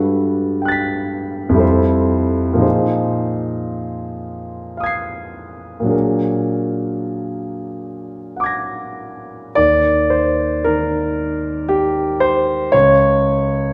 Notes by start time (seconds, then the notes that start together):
Already playing: G2 G3 F#4 A4 B4
0.62 G5 F#6
0.68 A6 B6
1.49 F2 G3
1.54 E4 A4
1.60 C5
2.53 A#2 F3
2.57 D#4 G#4
2.62 C5
4.77 F5 D#6
4.84 G#6 C7
5.80 A#2 F#3
5.85 D4 G#4
5.90 A#4
8.36 F#5 D6
8.44 G#6 A#6
9.55 D#2 D5
10.10 C5
10.64 D#3 A#4
11.68 G4
12.20 C5
12.72 C#2 C#5